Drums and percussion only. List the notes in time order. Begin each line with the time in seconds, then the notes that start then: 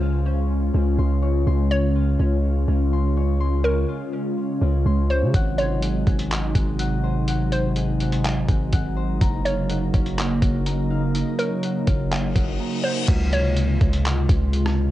5.34 kick, closed hi-hat
5.58 closed hi-hat
5.82 closed hi-hat
6.07 kick, closed hi-hat
6.19 closed hi-hat
6.31 clap, closed hi-hat
6.55 kick, closed hi-hat
6.79 closed hi-hat
7.28 closed hi-hat
7.52 closed hi-hat
7.76 closed hi-hat
8.00 closed hi-hat
8.12 closed hi-hat
8.25 clap, closed hi-hat
8.49 kick, closed hi-hat
8.73 kick, closed hi-hat
9.21 kick, closed hi-hat
9.46 closed hi-hat
9.70 closed hi-hat
9.94 kick, closed hi-hat
10.06 closed hi-hat
10.18 clap, closed hi-hat
10.42 kick, closed hi-hat
10.66 closed hi-hat
11.15 closed hi-hat
11.39 closed hi-hat
11.63 closed hi-hat
11.87 kick, closed hi-hat
12.12 clap, closed hi-hat
12.36 kick, closed hi-hat
13.08 kick, closed hi-hat, crash
13.33 closed hi-hat
13.57 closed hi-hat
13.81 kick, closed hi-hat
13.93 closed hi-hat
14.05 clap, closed hi-hat
14.29 kick, closed hi-hat
14.53 closed hi-hat
14.66 cross-stick